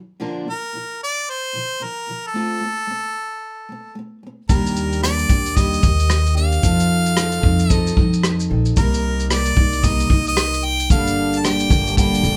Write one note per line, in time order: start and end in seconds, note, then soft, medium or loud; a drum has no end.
0.00 0.16 D#3 soft
0.00 0.18 F#3 medium
0.20 0.45 A#2 medium
0.20 0.47 D3 medium
0.20 0.47 F3 medium
0.20 0.47 A#3 medium
0.20 0.48 D4 medium
0.20 0.48 A#4 medium
0.46 0.69 A#2 soft
0.46 0.70 D3 soft
0.46 0.71 F3 soft
0.46 0.98 A#4 medium
0.73 0.96 A#2 medium
0.73 0.97 D3 medium
0.73 0.98 F3 medium
1.03 1.31 D5 medium
1.30 1.85 C5 medium
1.53 1.76 A#2 soft
1.53 1.77 D3 soft
1.53 1.78 F3 soft
1.80 2.03 A#2 soft
1.80 2.04 D3 medium
1.80 2.05 F3 soft
1.80 2.28 A#4 medium
2.07 2.30 A#2 soft
2.07 2.31 D3 soft
2.07 2.32 F3 soft
2.27 3.97 A4 medium
2.34 2.60 A3 medium
2.34 2.62 C4 medium
2.34 2.62 F4 medium
2.34 2.62 A4 medium
2.61 2.84 A3 soft
2.61 2.86 C4 soft
2.87 3.10 A3 medium
2.87 3.12 C4 medium
3.69 3.91 A3 soft
3.69 3.93 C4 medium
3.95 4.18 A3 medium
3.95 4.20 C4 medium
4.23 4.45 A3 soft
4.23 4.47 C4 medium
4.49 5.25 D#2 medium
4.49 5.08 D#3 medium
4.49 5.01 G3 medium
4.49 5.02 A#3 medium
4.49 5.03 D4 medium
4.49 5.04 G4 medium
4.49 4.99 A#4 medium
4.49 kick loud
4.49 shaker medium
4.66 shaker soft
4.76 shaker soft
4.92 shaker soft
5.02 5.29 G3 soft
5.02 5.30 A#3 medium
5.02 5.30 D4 medium
5.02 5.28 G4 medium
5.02 5.58 D5 medium
5.02 cross-stick medium
5.02 shaker medium
5.19 shaker soft
5.29 5.79 D#2 medium
5.29 5.56 A#3 soft
5.29 5.56 D4 soft
5.29 5.56 G4 soft
5.29 kick medium
5.29 shaker soft
5.46 shaker soft
5.56 5.83 D#3 medium
5.56 5.83 G3 medium
5.56 5.83 A#3 medium
5.56 5.83 D4 medium
5.56 5.81 G4 medium
5.56 6.36 D#5 medium
5.56 kick medium
5.56 shaker medium
5.74 shaker soft
5.82 6.59 D#2 medium
5.82 6.37 A#3 soft
5.82 6.34 G4 soft
5.82 kick medium
5.82 shaker soft
6.00 shaker soft
6.10 cross-stick medium
6.10 shaker medium
6.26 shaker soft
6.35 6.63 A#3 soft
6.35 6.63 D4 soft
6.35 6.62 G4 soft
6.35 7.73 F5 loud
6.35 shaker soft
6.52 shaker soft
6.62 7.39 F2 medium
6.62 7.14 F3 medium
6.62 7.16 C4 medium
6.62 7.17 D#4 medium
6.62 7.17 A4 medium
6.62 kick loud
6.62 shaker medium
6.80 shaker soft
7.06 shaker soft
7.15 7.43 F3 medium
7.15 7.43 C4 medium
7.15 7.42 D#4 medium
7.15 7.40 A4 medium
7.15 cross-stick loud
7.15 shaker medium
7.32 shaker soft
7.41 7.93 F2 medium
7.41 7.69 C4 soft
7.41 7.69 D#4 soft
7.41 7.69 A4 medium
7.41 kick medium
7.59 shaker soft
7.69 7.96 F3 medium
7.69 7.96 C4 medium
7.69 7.97 D#4 medium
7.69 7.95 A4 medium
7.69 8.46 D#5 loud
7.69 kick medium
7.69 shaker medium
7.87 shaker medium
7.96 8.46 F2 medium
7.96 8.53 C4 soft
7.96 8.51 D#4 medium
7.96 8.48 A4 medium
7.96 kick medium
8.13 shaker soft
8.23 cross-stick medium
8.23 shaker medium
8.40 shaker soft
8.50 8.75 A#1 medium
8.50 8.77 C4 soft
8.50 8.77 D#4 soft
8.50 8.76 A4 soft
8.65 shaker soft
8.76 9.53 C2 medium
8.76 9.30 C3 medium
8.76 9.29 G3 medium
8.76 9.30 A#3 medium
8.76 9.31 D#4 medium
8.76 9.27 A#4 medium
8.76 9.33 A#4 medium
8.76 kick medium
8.76 shaker medium
8.94 shaker medium
9.20 shaker soft
9.29 9.56 G3 medium
9.29 9.57 A#3 medium
9.29 9.57 D#4 medium
9.29 9.55 A#4 medium
9.29 9.86 D5 medium
9.29 cross-stick medium
9.29 shaker medium
9.46 shaker soft
9.57 10.06 C2 medium
9.57 9.83 A#3 soft
9.57 9.84 D#4 soft
9.57 9.83 A#4 soft
9.57 kick medium
9.73 shaker soft
9.83 10.10 C3 medium
9.83 10.10 G3 medium
9.83 10.11 A#3 medium
9.83 10.11 D#4 medium
9.83 10.09 A#4 medium
9.83 10.27 D#5 medium
9.83 kick medium
9.83 shaker medium
10.00 shaker soft
10.10 10.86 C2 medium
10.10 10.91 A#3 soft
10.10 10.91 D#4 soft
10.10 10.92 A#4 medium
10.10 kick medium
10.26 10.66 D#5 loud
10.26 shaker soft
10.37 cross-stick loud
10.37 shaker medium
10.54 shaker soft
10.64 10.90 G5 loud
10.79 shaker soft
10.90 11.66 G1 medium
10.90 11.43 G2 medium
10.90 11.97 D3 medium
10.90 11.42 G3 medium
10.90 11.44 A#3 medium
10.90 11.45 D4 medium
10.90 11.46 A4 medium
10.90 11.40 F5 loud
10.90 kick loud
10.90 shaker medium
11.07 shaker medium
11.33 shaker soft
11.39 11.70 G3 medium
11.39 11.47 A5 medium
11.44 11.71 A#3 medium
11.44 11.70 D4 medium
11.44 11.69 A4 medium
11.44 11.97 G5 loud
11.44 cross-stick loud
11.44 shaker medium
11.60 shaker soft
11.70 12.20 G1 medium
11.70 11.97 G3 soft
11.70 11.97 A#3 soft
11.70 11.98 D4 soft
11.70 11.97 A4 medium
11.70 kick medium
11.70 shaker soft
11.87 shaker soft
11.97 12.24 G2 medium
11.97 12.24 D3 medium
11.97 12.24 G3 medium
11.97 12.24 A#3 medium
11.97 12.24 D4 medium
11.97 12.23 A4 medium
11.97 12.37 G5 medium
11.97 kick medium
11.97 shaker medium
12.14 shaker medium
12.23 12.37 G1 medium
12.23 12.37 G3 soft
12.23 12.37 A#3 soft
12.23 12.37 D4 soft
12.23 12.37 A4 medium
12.23 shaker medium